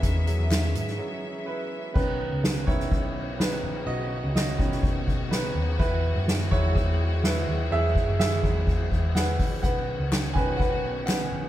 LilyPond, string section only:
\new Staff \with { instrumentName = "String section" } { \time 4/4 \key b \major \tempo 4 = 125 << { e''1 | fis'1~ | fis'1~ | fis'1~ |
fis'1 | fis'1 | } \\ { <cis' fis' gis'>1 | <cis b cis'>1~ | <cis b cis'>1 | <e gis>1~ |
<e gis>1 | <dis b cis'>1 | } >> }